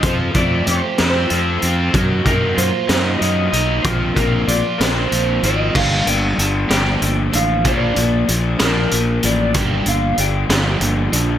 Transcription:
0.02 F2 F3 C4 F4 A4 C5, kick, closed hi-hat
0.34 F2 A3 C4 F4 A4 C5 D5, kick, closed hi-hat
0.67 F2 G4 C5, closed hi-hat
0.98 F2 C4 F4 A4 C5, snare, closed hi-hat
1.30 F2 F3 C4 F4 A4 C5, closed hi-hat
1.62 F2 C4 F4 A4 C5, closed hi-hat
1.93 F#2 F#3 A#3 D#4 A#4, kick, closed hi-hat
2.25 F#2 F#3 A#3 D#4 A#4, kick, closed hi-hat
2.56 F#2 F4 C5, closed hi-hat
2.88 F#2 F#3 A#3 D#4 A#4, snare, closed hi-hat
3.19 F#2 F#3 A#3 D#4 A#4 D#5, closed hi-hat
3.51 B1 F#3 A#3 D#4 A#4 D#5, closed hi-hat
3.82 A#1 F3 A#3 C4 F4 A#4 C5, kick, closed hi-hat
4.14 A#1 A#3 C4 F4 A#4, kick, closed hi-hat
4.47 A#1 F4 D5, closed hi-hat
4.78 A#1 A#3 C4 F4 A#4 C5, snare, closed hi-hat
5.10 A#1 F3 A#3 C4 F4 A#4, closed hi-hat
5.42 G#1 A#3 C4 F4 A#4 D#5, closed hi-hat
5.74 G1 G2 A#3 D4 G4 F5, kick, crash
6.06 G1 D3 A#3 D4 G5, closed hi-hat
6.37 G1 D3 A5, closed hi-hat
6.68 G1 F3 A#3 D4 G4 G5, snare, closed hi-hat
7.00 G1 D3 A#3 D4 G5, closed hi-hat
7.32 A1 F3 A#3 D4 F5, closed hi-hat
7.65 A#1 A#2 F3 A#3 D4 D5, kick, closed hi-hat
7.96 A#1 F3 A#3, closed hi-hat
8.28 A#1 A#2, closed hi-hat
8.36 C5
8.59 A#1 F3 A#3 D4 A#4, snare, closed hi-hat
8.91 A#1 A#2 F3 A#3, closed hi-hat
9.23 A1 F3 A#3 D5, closed hi-hat
9.54 G1 G2 A#3 D4 G4, kick, closed hi-hat
9.86 G1 D3 A#3 D4 F5, closed hi-hat
10.18 G1 D3 G5, closed hi-hat
10.49 G1 F3 A#3 D4 G4, snare, closed hi-hat
10.80 G1 D3 A#3 D4, closed hi-hat
11.12 A#1 F3 A#3 D4, closed hi-hat

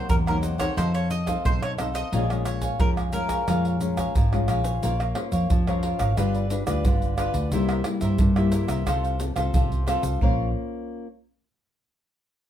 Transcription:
Already playing: F#3 A#3 D#4 A#4 C5 F#5
0.09 E2 C3 A#4, pandeiro, shaker, surdo
0.26 F#3 A#3 D#4 A#4 C5 F#5, pandeiro, tamborim, shaker, surdo
0.41 D#4 A#4 C5 F#5, pandeiro, shaker
0.58 C4 D#4 A4 A#4 C5 C#5 F#5, pandeiro, tamborim, shaker, surdo
0.76 F2 F3 D#4 A4 C5 F5, pandeiro, tamborim, shaker, surdo
0.94 A4 C5 C#5 F5, pandeiro, shaker
1.10 D#5, muted cavaquinho stroke, pandeiro, shaker
1.26 C4 D#4 A4 C5 F5, pandeiro, tamborim, shaker, surdo
1.44 B1 D#4 A4 C5 F5, pandeiro, shaker, surdo
1.62 C#5, pandeiro, tamborim, shaker
1.78 C4 D#4 A4 C5 F5, pandeiro, tamborim, shaker
1.94 A4 C5 D#5 F5, pandeiro, shaker
2.12 A#1 A#2 G#3 C#4 F4 A#4 C#5 F5 G#5, pandeiro, shaker, surdo
2.30 G#3 C#4 F4 C#5 F5 G#5, pandeiro, tamborim, shaker
2.45 C#5, muted cavaquinho stroke, pandeiro, tamborim, shaker
2.62 C#5 F5 G#5, pandeiro, shaker, surdo
2.80 F2 F3 G#3 C#4 F4 A#4, pandeiro, shaker, surdo
2.97 C#5 F5 G#5, pandeiro, tamborim, shaker, surdo
3.13 G#3 C#4 F4 A#4 C#5 F5 G#5, pandeiro, shaker
3.29 C#5 F5 G#5, pandeiro, tamborim, shaker, surdo
3.48 F2 A#2 G#3 C#4 F4 A#4 C#5 F5 G#5, pandeiro, tamborim, shaker, surdo
3.65 C#5 F5 G#5, pandeiro, shaker
3.81 G#3 C#4 F4, muted cavaquinho stroke, pandeiro, shaker
3.97 C#5 F5 G#5, pandeiro, tamborim, shaker, surdo
4.15 G#1 F3 A#4 C#5 F5 G#5, pandeiro, shaker, surdo
4.33 G#3 C#4 F4, pandeiro, tamborim, shaker
4.48 A#1 A#4 C#5 F5 G#5, pandeiro, tamborim, shaker
4.64 C#4 F4 C5 C#5 F5 G#5, pandeiro, shaker
4.82 A#1 A#3 F4 A#4 C#5 F5, pandeiro, shaker, surdo
5.00 A#4 C#5 F5, pandeiro, tamborim, shaker
5.15 C#4 F4 C5, muted cavaquinho stroke, pandeiro, tamborim
5.32 F2 A#4 C#5 F5, pandeiro, shaker, surdo
5.50 F2 F3, pandeiro, shaker, surdo
5.67 C#4 F4 A#4 C5 C#5 F5, pandeiro, tamborim, shaker
5.83 F4 A#4 C#5 F5, pandeiro
5.99 G#1 A#4 C#5 F5, pandeiro, tamborim, shaker, surdo
6.17 G1 G3 D4 F4 G4 B4 D5, pandeiro, tamborim, shaker, surdo
6.34 G4 B4 D5, pandeiro, shaker
6.50 D4 F4 B4, muted cavaquinho stroke, pandeiro, shaker
6.67 D2 D4 F4 G4 B4 D5, pandeiro, tamborim, shaker, surdo
6.85 G1 D3 F4 G4 B4 D5, pandeiro, shaker, surdo
7.02 pandeiro, shaker, surdo
7.17 D4 F4 G4 B4 D5, pandeiro, tamborim, shaker
7.34 D2 G4 B4 D5, pandeiro, shaker, surdo
7.52 C2 C3 G3 A#3 E4 A#4 C5 E5, pandeiro, shaker, surdo
7.69 A#4 C5 E5, pandeiro, tamborim, shaker
7.84 G3 A#3 E4, muted cavaquinho stroke, pandeiro, tamborim, shaker
8.01 G2 A#4 C5 E5, pandeiro, shaker, surdo
8.19 G2, pandeiro, shaker, surdo
8.36 G3 A#3 E4 A#4 C5 E5, pandeiro, tamborim, shaker
8.52 E4 A#4 C5 E5, pandeiro, shaker
8.68 C2 A#4 C5 E5, pandeiro, tamborim, shaker, surdo
8.86 C2 C3 C4 F4 A4 C5 F5, pandeiro, tamborim, shaker, surdo
9.04 A4 C5 F5, pandeiro, shaker
9.19 C4 F4 A4, muted cavaquinho stroke, pandeiro, shaker
9.36 C2 C4 F4 A4 C5 F5, pandeiro, tamborim, shaker, surdo
9.54 C2 C3 F4 A4 C5 F5, pandeiro, shaker, surdo
9.72 pandeiro, shaker, surdo
9.87 C4 F4 A4 C5 F5, pandeiro, tamborim, shaker
10.02 C2 A4 C5 F5, pandeiro, shaker, surdo
10.21 A#1 A#3 C#4 F4 A#4 C5 C#5 F5, surdo

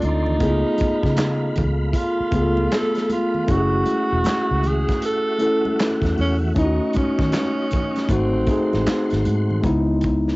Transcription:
Already playing: A3 C4 C#4 D4 F4 A4 D5 C6
0.02 D2 D#4, closed hi-hat, muted conga, high conga
0.26 low conga
0.39 C#2 A3 B3 E4 F5 B5, kick, closed hi-hat
0.43 G#4
0.48 F4
0.78 kick, closed hi-hat, muted conga, high conga
0.82 muted fingered electric bass stroke
1.03 C#3, kick, snare
1.17 snare, clap, closed hi-hat, muted conga, high conga
1.56 C#2, kick, closed hi-hat, muted conga, low conga
1.91 E4, kick, closed hi-hat
1.96 F4
2.20 muted fingered electric bass stroke
2.31 C#2 A3 B3 F4, kick, closed hi-hat, muted conga
2.36 G#4
2.42 A4
2.57 high conga
2.72 A4, snare, clap, closed hi-hat
2.95 snare, closed hi-hat
3.10 F4, closed hi-hat, muted conga, high conga
3.34 low conga
3.47 F#1 A3 C#4 E4 F#4 E5 F#5, kick, closed hi-hat, muted conga
3.51 F#4 G4
3.57 G#4
3.86 closed hi-hat, high conga
4.12 E1
4.24 muted fingered electric bass stroke, snare, clap, closed hi-hat, muted conga, high conga
4.51 C#2
4.63 G#4, closed hi-hat, muted conga, low conga
4.88 kick, snare, closed hi-hat
5.02 A4, closed hi-hat, muted conga
5.39 A3 C#4 E4, closed hi-hat, muted conga
5.43 A4
5.65 high conga
5.79 snare, clap, closed hi-hat
6.02 E2, kick, snare, closed hi-hat
6.17 E2 C#4, open hi-hat, high conga
6.42 low conga
6.54 D#2 A3 C#4 D#4 D#5 C#6, kick, closed hi-hat, muted conga
6.58 E4
6.65 F#4
6.93 C#4, kick, closed hi-hat, muted conga, high conga
6.97 muted fingered electric bass stroke
7.19 D#3, kick, snare
7.32 snare, clap, closed hi-hat, high conga
7.71 kick, closed hi-hat, muted conga, low conga
7.96 snare, closed hi-hat
8.08 G#1 A3 C4 D#4 F#5 C6, kick, closed hi-hat, low conga
8.12 F#4
8.35 A1
8.47 A3 C4 D#4, kick, closed hi-hat, muted conga
8.51 G#4
8.73 A1, snare, high conga
8.86 muted fingered electric bass stroke, snare, clap, closed hi-hat
9.10 G#1, snare, closed hi-hat
9.25 G#2, closed hi-hat, high conga
9.50 low conga
9.62 C#2 G#3 B3 D#4, kick, closed hi-hat, muted conga
9.66 E4
10.01 kick, closed hi-hat, muted conga
10.28 snare

